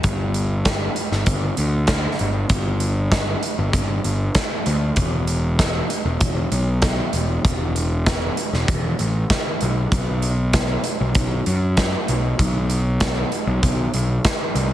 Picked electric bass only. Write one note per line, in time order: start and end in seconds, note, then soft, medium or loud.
0.04 0.87 G1 medium
1.12 1.24 G1 medium
1.26 1.51 G1 medium
1.58 2.06 D2 medium
2.20 2.44 G1 medium
2.50 3.34 G1 medium
3.58 3.70 G1 medium
3.74 3.98 G1 medium
4.04 4.29 G1 medium
4.66 4.90 D2 medium
4.96 5.80 E1 loud
6.05 6.17 E1 medium
6.21 6.45 E1 medium
6.52 7.00 B1 medium
7.13 7.37 E1 medium
7.44 8.28 E1 medium
8.53 8.65 E1 medium
8.68 8.92 E1 medium
8.99 9.23 A1 medium
9.62 9.86 B1 medium
9.92 10.76 B1 loud
11.00 11.12 B1 medium
11.15 11.39 B1 medium
11.46 11.94 F#2 medium
12.08 12.32 B1 medium
12.39 13.23 B1 medium
13.47 13.59 B1 medium
13.63 13.87 B1 medium
13.94 14.18 B1 medium
14.55 14.73 C2 medium